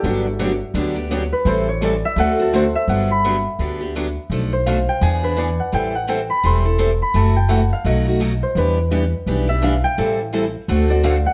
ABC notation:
X:1
M:4/4
L:1/16
Q:"Swing" 1/4=169
K:G
V:1 name="Harp"
F8 z6 B2 | c2 ^c2 d2 e2 f2 A2 =c2 e2 | f2 b2 z12 | z2 c2 =f2 g2 ^g2 B2 d2 ^f2 |
g2 f2 g2 b2 c'6 b2 | a2 g2 f2 =f2 ^d6 c2 | B8 z2 e2 =f2 g2 | z8 z2 d2 =f2 ^f2 |]
V:2 name="Steel-string acoustic guitar"
[D,F,B,DG]2 z2 [D,F,B,DG] z3 [D,F,B,DG]2 [B,DG]2 [D,F,B,DG] z3 | [E,G,CEA]2 z2 [E,G,CEA] z3 [D,A,CFA]2 [CFA]2 [D,A,CFA] z3 | [D,F,B,DG]2 z2 [D,F,B,DG] z3 [D,F,B,DG]2 [B,DG]2 [D,F,B,DG] z3 | [B,,=F,A,DA]2 z2 [B,,F,A,DA] z3 [E,B,D^G]2 [B,DG]2 [E,B,DG] z3 |
[E,G,CEA]2 z2 [E,G,CEA] z3 [E,G,CEA]2 [CEA]2 [E,G,CEA] z3 | [C,E,A,EF]2 z2 [C,E,A,EF] z3 [B,,F,A,^DF]2 [A,DF]2 [B,,F,A,DF] z3 | [E,B,DG]2 z2 [E,B,DG] z3 [E,B,DG]2 [B,DG]2 [E,B,DG] z3 | [E,G,CEA]2 z2 [E,G,CEA] z3 [D,A,CFA]2 [CFA]2 [D,A,CFA] z3 |]
V:3 name="Steel-string acoustic guitar"
[D,F,B,DG]2 z2 [D,F,B,DG] z3 [D,F,B,DG]2 z2 [D,F,B,DG] z3 | [E,G,CEA]2 z2 [E,G,CEA] z3 [D,A,CFA]2 z2 [D,A,CFA] z3 | z16 | z16 |
z16 | z16 | [E,G,DEB]2 z2 [E,G,DEB] z3 [E,G,DEB]2 z2 [E,G,DEB] z3 | [E,G,CEA]2 z2 [E,G,CEA] z3 [D,A,CFA]2 z2 [D,A,CFA] z3 |]
V:4 name="Upright bass" clef=bass
G,,,8 D,,8 | A,,,8 D,,8 | G,,,8 D,,8 | B,,,8 E,,8 |
A,,,8 E,,,8 | F,,,8 B,,,8 | E,,8 B,,,8 | A,,,8 D,,8 |]